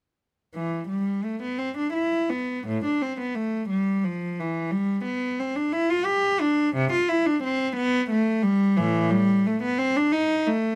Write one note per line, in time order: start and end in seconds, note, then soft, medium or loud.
0.55 0.87 E3 medium
0.89 1.23 G3 medium
1.24 1.41 A3 medium
1.42 1.59 B3 medium
1.58 1.76 C4 medium
1.77 1.94 D4 medium
1.94 2.28 E4 medium
2.30 2.66 B3 medium
2.67 2.84 A2 medium
2.85 3.01 D4 medium
3.02 3.19 C4 medium
3.20 3.35 B3 medium
3.35 3.69 A3 medium
3.70 4.03 G3 medium
4.04 4.37 F3 medium
4.39 4.71 E3 medium
4.71 5.04 G3 medium
5.05 5.38 B3 medium
5.40 5.56 C4 medium
5.56 5.72 D4 medium
5.73 5.89 E4 medium
5.90 6.06 F4 medium
6.05 6.40 G4 medium
6.41 6.75 D4 medium
6.75 6.92 C3 loud
6.92 7.08 F4 medium
7.09 7.25 E4 medium
7.26 7.42 D4 medium
7.44 7.76 C4 loud
7.77 8.09 B3 loud
8.11 8.43 A3 loud
8.43 8.76 G3 loud
8.77 9.08 A2 medium
8.77 9.11 E3 medium
9.11 9.44 G3 loud
9.46 9.62 A3 medium
9.62 9.78 B3 loud
9.79 9.95 C4 loud
9.97 10.13 D4 loud
10.12 10.46 D#4 loud
10.47 10.75 A3 medium